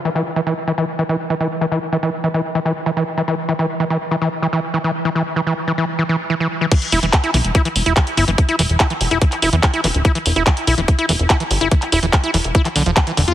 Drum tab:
CC |----------------|----------------|----------------|----------------|
HH |----------------|----------------|----------------|----------------|
CP |----------------|----------------|----------------|----------------|
BD |----------------|----------------|----------------|----------------|

CC |x---------------|----------------|----------------|----------------|
HH |xxoxxxoxxxoxxxox|xxoxxxoxxxoxxxox|xxoxxxoxxxoxxxox|xxoxxxoxxxoxxxox|
CP |----x-------x---|----x----x--x---|----x-------x---|-x--x----x--x---|
BD |o---o---o---o---|o---o---o---o---|o---o---o---o---|o---o---o---o---|